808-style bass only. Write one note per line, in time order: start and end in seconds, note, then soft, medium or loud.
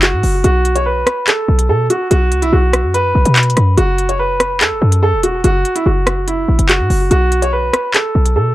0.00 0.15 F#1 loud
0.13 0.23 A2 loud
0.23 0.43 F#1 loud
0.44 1.04 B1 loud
1.48 1.71 B1 loud
1.69 1.89 B2 loud
2.11 2.33 B1 loud
2.32 2.44 C#2 loud
2.42 2.52 B1 loud
2.53 2.85 B1 loud
2.84 3.14 F#2 loud
3.15 3.25 B1 loud
3.26 3.56 B2 loud
3.57 3.77 F#2 loud
3.78 4.62 F#1 loud
4.61 4.73 F#2 loud
4.71 4.81 F#1 loud
4.82 5.14 F#2 loud
5.13 5.43 E1 loud
5.44 5.64 F#1 loud
5.86 6.46 F#1 loud
6.48 6.58 A1 loud
6.59 6.81 F#1 loud
6.80 6.90 A2 loud
6.90 7.10 F#1 loud
7.11 7.71 B1 loud
8.15 8.37 B1 loud
8.36 8.55 B2 loud